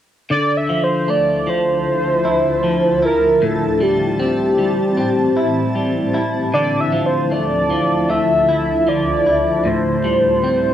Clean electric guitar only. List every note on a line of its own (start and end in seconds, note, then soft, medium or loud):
0.30 3.41 D3 medium
0.69 1.46 F3 soft
1.08 3.84 A3 soft
1.47 2.62 F3 soft
2.25 3.02 E4 medium
2.64 3.49 F3 soft
3.03 5.36 E4 medium
3.42 6.53 A2 medium
3.81 4.57 G3 soft
4.19 4.96 C4 soft
4.58 5.74 G3 soft
4.97 6.61 C4 soft
5.37 6.14 E4 medium
5.75 6.61 G3 soft
6.14 6.95 E4 medium
6.54 9.65 D3 medium
6.92 7.69 F3 medium
7.31 8.09 A3 soft
7.70 8.86 F3 soft
8.10 10.07 A3 medium
8.49 9.26 E4 medium
8.87 9.73 F3 soft
9.26 10.74 E4 medium
9.65 10.74 A2 medium
10.04 10.74 G3 medium
10.44 10.74 C4 soft